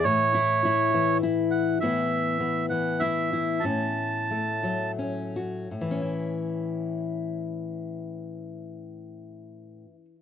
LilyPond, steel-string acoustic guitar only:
\new Staff \with { instrumentName = "Steel-string acoustic guitar" } { \time 6/8 \key a \major \tempo 4. = 58 << { r8 e'8 e'4 e'4 | <e b e'>4 b4 e'8 e'8 | cis'4 a4 cis'8 fis'8 | <e cis' e'>2.~ |
<e cis' e'>2. | } \\ { a,4. e4. | a,4. e4. | a,4. fis4. | a,2.~ |
a,2. | } >> }